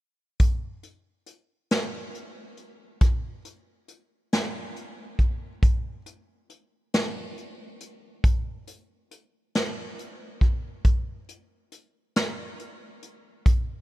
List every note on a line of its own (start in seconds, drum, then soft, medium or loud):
0.40 kick medium
0.40 closed hi-hat medium
0.83 closed hi-hat soft
1.26 closed hi-hat soft
1.71 snare medium
1.71 closed hi-hat medium
2.15 closed hi-hat soft
2.57 closed hi-hat soft
3.01 kick medium
3.01 closed hi-hat medium
3.45 closed hi-hat soft
3.88 closed hi-hat soft
4.33 snare medium
4.33 closed hi-hat medium
4.76 closed hi-hat soft
5.19 kick medium
5.19 closed hi-hat soft
5.62 kick medium
5.62 closed hi-hat medium
6.06 closed hi-hat soft
6.50 closed hi-hat soft
6.94 snare medium
6.94 closed hi-hat medium
7.37 closed hi-hat soft
7.80 closed hi-hat soft
8.24 kick loud
8.24 closed hi-hat medium
8.67 closed hi-hat soft
9.11 closed hi-hat soft
9.55 snare medium
9.55 closed hi-hat medium
9.99 closed hi-hat soft
10.41 kick medium
10.41 closed hi-hat soft
10.84 kick medium
10.84 closed hi-hat medium
11.29 closed hi-hat soft
11.72 closed hi-hat soft
12.16 snare medium
12.16 closed hi-hat medium
12.59 closed hi-hat soft
13.02 closed hi-hat soft
13.46 kick medium
13.46 closed hi-hat medium